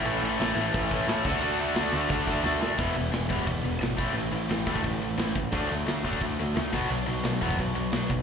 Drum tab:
CC |x---x---x---x-x-|x---x---x-------|----------------|----------------|
HH |----------------|----------------|o-o-o-o-o-o-o-o-|o-o-o-o-o-o-o-o-|
SD |----o-------o---|----o-------o-o-|----o-------o---|----o-------o---|
BD |--------o-o---o-|--------o-o-----|o-----ooo-----o-|------ooo-----o-|

CC |----------------|----------------|
HH |o-o-o-o-o-o-o-o-|o-o-o-o-o-o-o-o-|
SD |----o-------o---|----o-------o---|
BD |o-----ooo-----o-|------ooo-----o-|